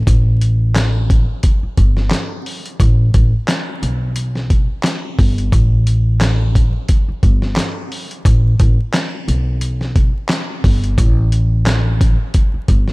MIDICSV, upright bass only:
0, 0, Header, 1, 3, 480
1, 0, Start_track
1, 0, Tempo, 681818
1, 50, Time_signature, 4, 2, 24, 8
1, 9102, End_track
2, 0, Start_track
2, 0, Title_t, "Upright bass"
2, 0, Program_c, 0, 32
2, 51, Note_on_c, 0, 33, 107
2, 878, Note_off_c, 0, 33, 0
2, 1251, Note_on_c, 0, 31, 83
2, 1464, Note_off_c, 0, 31, 0
2, 1970, Note_on_c, 0, 33, 105
2, 2184, Note_off_c, 0, 33, 0
2, 2214, Note_on_c, 0, 33, 94
2, 2332, Note_off_c, 0, 33, 0
2, 2692, Note_on_c, 0, 35, 86
2, 3278, Note_off_c, 0, 35, 0
2, 3652, Note_on_c, 0, 31, 92
2, 3865, Note_off_c, 0, 31, 0
2, 3890, Note_on_c, 0, 33, 110
2, 4717, Note_off_c, 0, 33, 0
2, 5090, Note_on_c, 0, 31, 88
2, 5304, Note_off_c, 0, 31, 0
2, 5810, Note_on_c, 0, 33, 104
2, 6024, Note_off_c, 0, 33, 0
2, 6053, Note_on_c, 0, 33, 96
2, 6172, Note_off_c, 0, 33, 0
2, 6532, Note_on_c, 0, 35, 83
2, 7118, Note_off_c, 0, 35, 0
2, 7492, Note_on_c, 0, 31, 96
2, 7705, Note_off_c, 0, 31, 0
2, 7730, Note_on_c, 0, 33, 109
2, 8557, Note_off_c, 0, 33, 0
2, 8931, Note_on_c, 0, 31, 86
2, 9102, Note_off_c, 0, 31, 0
2, 9102, End_track
3, 0, Start_track
3, 0, Title_t, "Muted upright bass strokes"
3, 1148, Note_on_c, 9, 29, 46
3, 1218, Note_off_c, 9, 29, 0
3, 4987, Note_on_c, 9, 29, 49
3, 5058, Note_off_c, 9, 29, 0
3, 8827, Note_on_c, 9, 29, 46
3, 8898, Note_off_c, 9, 29, 0
3, 9102, End_track
0, 0, End_of_file